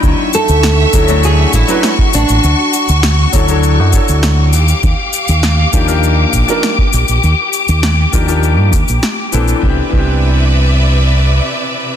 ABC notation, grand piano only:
X:1
M:4/4
L:1/16
Q:1/4=100
K:Ddor
V:1 name="Grand piano"
[^F,DE_db]2 z4 [F,^C=DEA] [F,A,CDE]4 [F,CDEB] z4 | z6 [^F,^CDEA] [F,DEA^c]3 [F,DEAc]4 z2 | z6 [F,_B,D_EG] [F,B,DEG]4 [F,B,DE_B] z4 | z6 [F,_B,D_EG] [F,B,DEG]3 z4 [=E,=B,CDA]2 |
[E,B,CDG] z [E,B,CDG]12- [E,B,CDG]2 |]